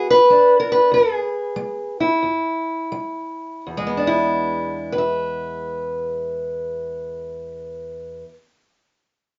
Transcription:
0.00 0.26 E2 medium
0.00 2.04 B3 medium
0.10 0.59 B4 loud
0.30 0.87 G#3 medium
0.30 0.95 D4 soft
0.60 0.69 A#4 medium
0.72 0.93 B4 medium
0.92 1.51 E2 medium
0.92 1.99 G#4 medium
1.56 2.18 G#3 medium
2.00 3.68 E4 medium
2.23 2.87 E2 medium
2.92 3.61 G#3 medium
3.66 8.23 E2 medium
3.77 8.28 G#3 medium
3.87 8.33 B3 medium
3.97 4.92 D4 medium
4.07 4.98 E4 medium
4.92 8.23 B4 medium
4.98 8.26 E5 medium

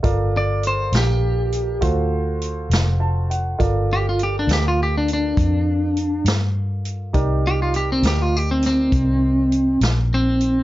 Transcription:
0.00 0.90 G1 medium
0.00 1.78 F4 medium
0.00 1.78 A4 medium
0.00 1.78 A#4 medium
0.00 0.31 D5 medium
0.00 1.78 D5 medium
0.00 kick medium
0.00 closed hi-hat medium
0.37 0.64 D5 medium
0.63 closed hi-hat medium
0.67 0.94 C5 medium
0.92 1.79 A#1 medium
0.92 snare loud
0.92 closed hi-hat medium
0.97 1.82 G4 medium
1.52 closed hi-hat medium
1.81 2.68 D2 medium
1.81 3.56 F4 medium
1.81 3.56 F#4 medium
1.81 3.56 A4 medium
1.81 3.56 C5 medium
1.81 kick medium
1.81 closed hi-hat medium
2.41 closed hi-hat medium
2.70 3.56 F1 medium
2.70 snare loud
2.70 closed hi-hat medium
3.00 3.28 A5 soft
3.30 3.58 F#5 soft
3.30 closed hi-hat medium
3.59 4.46 G1 medium
3.59 7.10 F4 medium
3.59 7.10 A4 soft
3.59 7.11 A#4 medium
3.59 7.11 D5 medium
3.59 kick medium
3.59 closed hi-hat medium
3.93 4.05 G4 medium
4.09 4.21 F4 medium
4.19 closed hi-hat medium
4.23 4.36 G4 medium
4.39 4.51 D4 medium
4.47 5.34 D2 medium
4.47 snare loud
4.47 closed hi-hat medium
4.53 4.65 G4 medium
4.68 4.80 F4 medium
4.83 4.95 G4 medium
4.98 5.10 D4 medium
5.08 closed hi-hat medium
5.13 6.25 D4 medium
5.37 6.23 F2 medium
5.37 kick loud
5.37 closed hi-hat medium
5.97 closed hi-hat soft
6.25 7.11 G2 medium
6.25 snare loud
6.25 closed hi-hat medium
6.85 closed hi-hat medium
7.13 8.01 C2 medium
7.13 10.63 D#4 medium
7.13 10.63 G4 medium
7.13 10.63 A#4 medium
7.13 10.63 D5 medium
7.13 kick loud
7.13 closed hi-hat medium
7.47 7.60 G4 medium
7.62 7.75 F4 medium
7.74 7.90 G4 medium
7.74 closed hi-hat medium
7.92 8.05 C4 medium
8.03 8.89 D2 medium
8.03 snare medium
8.03 closed hi-hat medium
8.07 8.22 G4 medium
8.22 8.37 F4 medium
8.37 8.49 G4 medium
8.51 8.64 C4 medium
8.62 9.79 C4 medium
8.62 snare soft
8.62 closed hi-hat medium
8.92 9.78 C2 medium
8.92 kick medium
8.92 closed hi-hat medium
9.52 closed hi-hat medium
9.81 10.63 A#1 medium
9.81 snare medium
9.81 closed hi-hat medium
10.14 10.63 C4 medium
10.40 closed hi-hat medium

